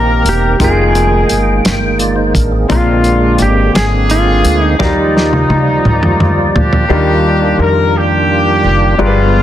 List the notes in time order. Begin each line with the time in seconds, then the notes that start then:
Already playing: A#1 C3 D#3 A#3 C4 D#4 G4 A#4 C5
0.25 E1, closed hi-hat
0.29 G4
0.59 F1 D#3 G#3 A#3 C4 D#4 F4 G#4 A#4 G5, kick, closed hi-hat
0.64 G#4
0.95 closed hi-hat
1.29 G1, closed hi-hat
1.65 G1, snare, closed hi-hat
1.99 F4 D5, closed hi-hat
2.16 D#4 C5
2.35 A1 D4 A#4, kick, closed hi-hat
2.51 C4 G#4
2.68 A#1 A#2 D3 G#3 C4 D4 F4 A#4, kick, closed hi-hat
3.04 closed hi-hat
3.38 G#1 G4, closed hi-hat
3.75 G#1 C4 D4 G#4, snare, closed hi-hat
4.10 F4, closed hi-hat
4.45 D2, closed hi-hat
4.64 D#4
4.79 D#2 F3 F#3 G3 A#3 D#4 F4 G4 A#4 D5, kick, snare
4.85 G3
5.17 snare
5.33 high tom
5.49 D2 F4, high tom
5.85 D2 A#3 F4 D5, mid tom
6.03 mid tom
6.20 mid tom
6.55 D2 A#3 D4 G4, floor tom
6.73 floor tom
6.88 D#2 D#3 G3 D4 F4 G4 A#4
7.59 F2 A#4
7.96 A#3 D4 G4
8.64 F#1
8.98 G1 G2 F3 G#3 B3 D4 F4 G4 A#4
9.02 F4
9.06 B4